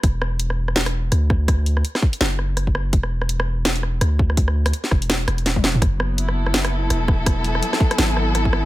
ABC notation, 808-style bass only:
X:1
M:4/4
L:1/8
Q:"Swing 16ths" 1/4=166
K:Dlyd
V:1 name="808-style bass" clef=bass
E,,,6 D,,2- | D,,2 z2 F,,,4 | E,,,6 D,,2- | D,,2 z E,,,2 E,,,3 |
F,,,6 E,,,2- | E,,,2 z2 G,,,4 |]